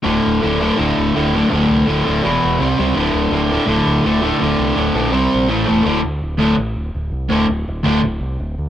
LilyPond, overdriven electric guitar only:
\new Staff \with { instrumentName = "Overdriven electric guitar" } { \clef bass \time 4/4 \key c \mixolydian \tempo 4 = 166 <d, a, d>4 <d, a, d>8 <d, a, d>8 <d, a, d>4 <d, a, d>8 <d, a, d>8 | <d, a, d>4 <d, a, d>8 <d, a, d>8 <e, b, e>4 <c g c'>8 <c g c'>8 | <d, a, d>4 <d, a, d>8 <d, a, d>8 <d, a, d>4 <d, a, d>8 <d, a, d>8 | <d, a, d>4 <d, a, d>8 <d, a, d>8 <c g c'>4 <a, e a>8 <a, e a>8 |
<d, a, d>8 r4 <d, a, d>8 r2 | <d, a, d>8 r4 <d, a, d>8 r2 | }